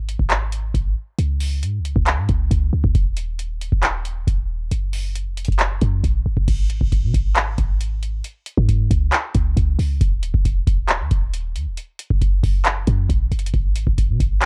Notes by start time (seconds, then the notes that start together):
Already playing: G#1
0.09 closed hi-hat
0.19 G#1, kick
0.30 clap, closed hi-hat
0.52 closed hi-hat
0.74 G#1, kick, closed hi-hat
1.19 C#2, closed hi-hat
1.40 open hi-hat
1.63 G#2, closed hi-hat
1.79 C#2
1.85 closed hi-hat
1.96 C#2, kick
2.06 clap, closed hi-hat
2.18 G#2
2.29 C#2, kick, closed hi-hat
2.51 C#2, kick, closed hi-hat
2.73 C#2
2.84 C#2, kick
2.95 D#1, kick, closed hi-hat
3.17 closed hi-hat
3.39 closed hi-hat
3.61 closed hi-hat
3.72 D#1, kick
3.83 clap, closed hi-hat
4.05 closed hi-hat
4.27 D#1, kick, closed hi-hat
4.71 F#1, closed hi-hat
4.93 open hi-hat
5.16 closed hi-hat
5.27 F1
5.38 closed hi-hat
5.45 F#1, kick, closed hi-hat
5.52 closed hi-hat
5.59 clap, closed hi-hat
5.82 F#2, kick, closed hi-hat
6.04 A#1, kick, closed hi-hat
6.26 F#1
6.37 F#1, kick
6.48 G#1, kick, closed hi-hat, crash
6.70 closed hi-hat
6.81 G#1, kick
6.92 kick, closed hi-hat
7.03 B2
7.14 G#1, kick, closed hi-hat
7.36 clap, closed hi-hat
7.58 G#1, kick, closed hi-hat
7.81 closed hi-hat
8.03 closed hi-hat
8.24 closed hi-hat
8.46 closed hi-hat
8.57 G#2, kick
8.69 kick, closed hi-hat
8.91 C#2, kick, closed hi-hat
9.12 clap, closed hi-hat
9.34 C#2, kick, closed hi-hat
9.57 C#2, kick, closed hi-hat
9.79 C#2, open hi-hat
10.01 D#1, kick, closed hi-hat
10.23 closed hi-hat
10.34 D#1, kick
10.45 kick, closed hi-hat
10.67 D#1, kick, closed hi-hat
10.88 clap, closed hi-hat
11.00 D#2
11.11 D#1, kick, closed hi-hat
11.34 closed hi-hat
11.55 D#2, closed hi-hat
11.66 D#1
11.77 closed hi-hat
11.99 closed hi-hat
12.10 F#1, kick
12.21 kick, closed hi-hat
12.44 F#1, kick, open hi-hat
12.65 clap, closed hi-hat
12.87 F#2, kick, closed hi-hat
13.10 A#1, kick, closed hi-hat
13.32 F#1, closed hi-hat
13.39 closed hi-hat
13.46 closed hi-hat
13.54 G#1, kick, closed hi-hat
13.76 closed hi-hat
13.87 G#1, kick
13.98 kick, closed hi-hat
14.09 B2
14.20 G#1, kick, closed hi-hat
14.41 clap, closed hi-hat